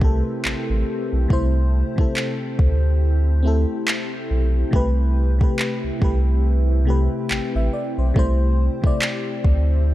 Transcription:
Already playing: C2 A3 C4 E4 G4 A#4 B4
0.00 C3 A3 G4, kick
0.04 A4
0.45 A1, clap
0.70 A1
1.13 B1
1.28 C2 C3 A3 E4 G4, kick
1.33 C5
1.96 D2 C3 A3 E4, kick
2.01 A4
2.17 clap
2.59 D2, kick
3.43 A3 C4 E4
3.47 A4
3.88 clap
4.30 B1
4.71 C2 C3 A3 E4 G4, kick
4.76 B4
5.39 C3 A3 G4, kick
5.44 B4
5.59 clap
5.84 C2
6.00 C2 C3 A3 G4, kick
6.04 B4
6.85 C3 A3 G4
6.90 B4
7.30 A1 G5, clap
7.55 A1 E5
7.73 D5
7.98 B1 C5
8.14 C2 C3 A3 C4 E4, kick
8.19 C5
8.82 D2 C3 A3 E4, kick
8.87 D5
9.02 clap
9.44 D2, kick

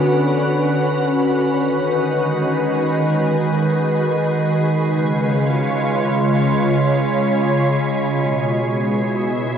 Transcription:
Already playing: D3 C#4 F#4 B4 B5
1.57 D#3
1.99 G#3
4.78 C#3
5.05 F4 C#5
8.00 B5
8.04 B2
8.87 E4
9.50 G#4

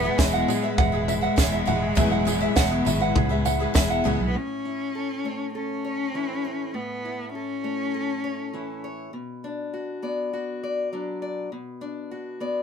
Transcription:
Already playing: E2 F#3 B3 E4 G#4 E5 F#5 B5
0.03 F#3 G#3 B3 E4 G#4
0.18 E1 E2 B2 F#3 G#3 B3 E4 E5, kick, snare, tambourine
0.33 F#5
0.48 F#3 G#3 B3 E4 G#4, floor tom, tambourine
0.62 F#3 G#3 B3 E4 E5
0.78 E1 G#3 F#5, kick, floor tom, tambourine
0.92 F#3 G#3 B3 E4 G#4
1.08 E5, floor tom, tambourine
1.21 F#3 G#3 B3 E4 F#5
1.36 E1 E2 B2 F#3 G#3 B3 E4 G#4, kick, snare, tambourine
1.52 E5
1.66 E1 F#3 G#3 B3 E4 F#5, floor tom, tambourine
1.82 G#4
1.95 E1 E2 B2 F#3 G#3 B3 E4 G#4 E5, kick, floor tom, tambourine
2.10 F#3 G#3 B3 E4 F#5
2.25 F#3 G#3 B3 E4 G#4, floor tom, tambourine
2.41 F#3 G#3 B3 E4 E5
2.56 E1 E2 B2 F#3 G#3 B3 E4 F#5, kick, snare, tambourine
2.71 G#4
2.85 G#1 F#3 G#3 B3 E4 E5, floor tom, tambourine
2.99 F#3 G#3 B3 E4 F#5
3.16 C#2 G#4, kick, floor tom
3.29 F#3 G#3 B3 E4 E5
3.45 F#5, floor tom, tambourine
3.59 F#3 G#3 B3 E4 G#4
3.74 E1 E2 B2 F#3 G#3 B3 E4 E5, kick, snare, tambourine
3.90 F#5
4.04 C#2 F#3 G#3 B3 E4 F#4 G#4, floor tom
4.21 B1
4.28 B3
4.34 A2 C#4
4.65 E4
4.95 A4
5.24 A3 C#5
5.55 C#4 A4
5.84 C#5
6.14 E3 E4
6.45 C#5
6.74 A2 B3
7.05 E4
7.34 C#4 A4
7.64 A3 C#5
7.94 A4
8.24 C#5
8.53 E3 E4
8.84 C#5
9.13 B2
9.44 D4
9.74 F#4
10.02 B3 D5
10.33 F#4
10.63 D5
10.93 F#3 D4
11.22 D5
11.52 B2
11.81 D4
12.11 F#4
12.40 B3 D5

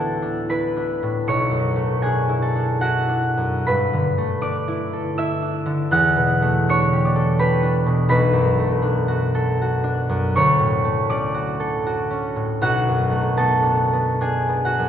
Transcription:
Already playing: D2 A2 B3 D4 E4 F#4 A4 F#5 A5
0.22 D4
0.49 E4 B4 B5
0.76 D4
1.03 A2
1.27 B1 C#5 C#6
1.51 F#2
1.76 A3
2.02 D4 G#4 G#5
2.29 E4
2.42 A4 A5
2.55 D4
2.81 E4 F#4 F#5
3.09 D4
3.37 F#2
3.67 G2 B4 B5
3.93 D3
4.18 A3
4.41 D4 D5 D6
4.68 E4
4.93 A4
5.18 E4 E5 E6
5.42 D4
5.66 D3
5.91 E2 F#5 F#6
6.17 B2
6.42 A3
6.69 D4 C#5 C#6
6.93 G4
7.05 D5 D6
7.16 A4
7.39 G4 B4 B5
7.62 D4
7.86 B2
8.09 B1 B4 B5
8.33 F#2
8.59 A3
8.82 D4
9.08 F#4
9.35 A4
9.62 F#4
9.84 D4
10.09 F#2
10.36 D2 C#5 C#6
10.59 A2
10.85 A3
11.10 C#4 D5 D6
11.34 F#4
11.60 A4
11.86 F#4
12.11 C#4
12.36 A2
12.61 B1 F#4 F#5
12.88 F#2
13.12 A3
13.37 B3 A4 A5
13.63 D4
13.93 B3
14.21 D4 G#4 G#5
14.49 B3
14.65 F#4 F#5
14.79 F#2

